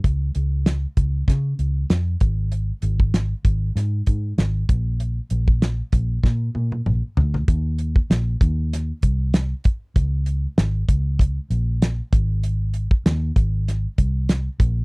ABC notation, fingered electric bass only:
X:1
M:4/4
L:1/16
Q:"Swing 16ths" 1/4=97
K:Ablyd
V:1 name="Fingered electric bass" clef=bass
_D,,2 D,,4 D,,2 _D,2 D,,2 F,,2 A,,,2- | A,,,2 A,,,4 A,,,2 A,,2 A,,2 A,,,2 B,,,2- | B,,,2 B,,,4 B,,,2 B,,2 B,,2 B,,, z D,,2 | E,,4 B,,,2 E,,4 C,,4 z2 |
_D,,4 A,,,2 D,,4 B,,,4 A,,,2- | A,,,4 E,,2 A,,,4 C,,4 B,,,2 |]